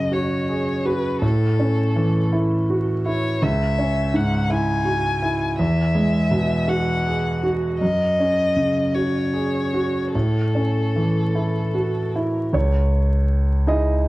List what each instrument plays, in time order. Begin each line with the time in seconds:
Already playing: grand piano F#2 C#3 C#4, violin D#5
0.11 grand piano F#4, violin C#5
0.49 grand piano G#4
0.86 grand piano F#4, violin B4
1.22 grand piano A2, violin A4
1.59 grand piano C#4
1.96 grand piano E3
2.32 grand piano E4
2.70 grand piano F#4
3.06 grand piano E4, violin C#5
3.42 grand piano C#2, violin E5
3.78 grand piano C#4
4.14 grand piano G#2, violin F#5
4.50 grand piano E4, violin G#5
4.85 grand piano F#4
5.22 grand piano E4
5.59 grand piano E2, violin E5
5.95 grand piano G#3
6.31 grand piano B2
6.68 grand piano F#4, violin F#5
7.06 grand piano G#4
7.43 grand piano F#4
7.80 grand piano F#2, violin D#5
8.19 grand piano C#4
8.56 grand piano C#3
8.94 grand piano F#4, violin C#5
9.34 grand piano G#4
9.74 grand piano F#4
10.13 grand piano A2, violin A4
10.55 grand piano C#4
10.96 grand piano E3
11.35 grand piano E4
11.74 grand piano F#4
12.15 grand piano E4
12.53 grand piano C#2 C#5, sub bass C#2
13.67 grand piano D#4 E4 G#4 D#5